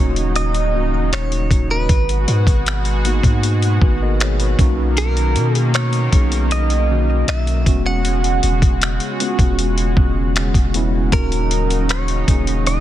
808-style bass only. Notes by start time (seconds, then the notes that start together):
Already playing: D#1
0.74 C#1
0.93 D#1
1.12 D#1
1.51 D#1
1.89 G#1
2.28 G#2
2.47 G#1
3.23 G#2
3.82 G#1
4.59 B1
5.36 B2
6.13 B1
7.28 B1
7.66 E1
8.43 E1
8.62 E1
9.39 E1
9.97 E1
10.55 E1
11.12 D#1
12.28 D#1